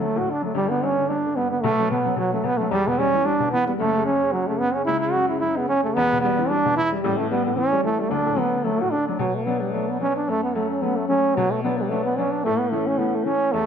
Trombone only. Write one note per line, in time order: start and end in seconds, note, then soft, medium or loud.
0.00 0.20 A3 medium
0.18 0.32 F#4 medium
0.31 0.44 D4 medium
0.45 0.55 A3 medium
0.55 0.71 G3 loud
0.69 0.86 B3 medium
0.84 1.11 C#4 medium
1.09 1.37 D4 medium
1.36 1.51 B3 loud
1.51 1.64 B3 medium
1.62 1.90 A3 loud
1.91 2.16 B3 medium
2.17 2.31 F#3 loud
2.33 2.47 A3 medium
2.45 2.59 B3 loud
2.57 2.73 A3 medium
2.71 2.89 G3 loud
2.88 3.00 B3 medium
2.98 3.27 C#4 loud
3.25 3.51 D4 medium
3.52 3.66 B3 loud
3.67 3.73 B3 medium
3.79 4.04 A3 loud
4.06 4.34 C#4 medium
4.32 4.49 F#3 medium
4.47 4.61 A3 medium
4.59 4.76 B3 loud
4.74 4.85 C#4 medium
4.86 4.99 E4 loud
5.00 5.13 E4 loud
5.12 5.28 F#4 loud
5.28 5.40 E4 medium
5.40 5.58 E4 medium
5.57 5.68 B3 medium
5.69 5.83 C#4 loud
5.84 5.96 A3 medium
5.95 6.21 B3 loud
6.21 6.50 B3 loud
6.49 6.76 D4 loud
6.77 6.91 E4 loud
7.03 7.19 G3 loud
7.17 7.30 A3 medium
7.31 7.44 B3 medium
7.45 7.59 B3 medium
7.58 7.84 C#4 loud
7.84 7.99 A3 loud
8.01 8.12 A3 medium
8.10 8.41 D4 loud
8.39 8.66 B3 medium
8.65 8.82 A3 medium
8.81 8.93 F#4 medium
8.91 9.07 D4 loud
9.08 9.19 D4 medium
9.20 9.37 F#3 medium
9.35 9.47 A3 medium
9.45 9.63 B3 medium
9.62 9.73 G3 medium
9.72 9.91 A3 medium
9.89 10.00 B3 medium
10.01 10.15 C#4 loud
10.17 10.31 D4 medium
10.29 10.43 A3 loud
10.43 10.57 B3 medium
10.56 10.69 A3 medium
10.70 10.84 C#4 medium
10.82 10.98 B3 medium
10.96 11.08 A3 medium
11.09 11.37 C#4 loud
11.35 11.53 F#3 loud
11.52 11.62 A3 medium
11.63 11.79 B3 medium
11.78 11.91 G3 medium
11.89 12.04 A3 medium
12.05 12.19 B3 medium
12.18 12.33 C#4 medium
12.31 12.46 D4 medium
12.44 12.60 A3 loud
12.59 12.72 B3 medium
12.71 12.88 A3 medium
12.87 13.00 C#4 medium
12.98 13.16 B3 medium
13.15 13.26 A3 medium
13.24 13.54 C#4 loud
13.52 13.66 A3 loud